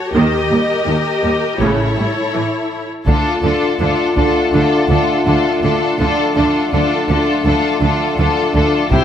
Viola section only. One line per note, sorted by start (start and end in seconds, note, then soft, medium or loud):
0.15 0.48 D#3 soft
0.15 1.58 G4 soft
0.51 0.59 G3 soft
0.87 0.95 D#3 soft
1.24 1.32 G3 soft
1.60 1.94 C#3 soft
1.60 2.87 E4 soft
1.98 2.06 G3 soft
2.34 2.42 E3 soft
3.07 3.42 D4 soft
3.43 3.78 D4 soft
3.80 4.16 D4 soft
4.17 4.52 D4 soft
4.53 4.88 D4 soft
4.89 5.25 D4 soft
5.26 5.62 D4 soft
5.63 5.98 D4 soft
5.99 6.34 D4 soft
6.36 6.71 D4 soft
6.72 7.08 D4 soft
7.09 7.44 D4 soft
7.45 7.81 D4 soft
7.82 8.18 D4 soft
8.19 8.53 D4 soft
8.55 8.91 D4 soft
8.91 9.04 E4 soft